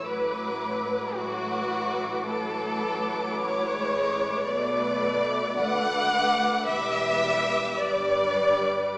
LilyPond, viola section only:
\new Staff \with { instrumentName = "Viola section" } { \time 12/8 \key b \dorian \tempo 4. = 54 << { b'4. b'4. b'2. | \key e \dorian b'4. b'4. b'4. b'4. | } \\ { fis4. fis4. fis2 gis4 | a4. a4. g4. g4. | } >> }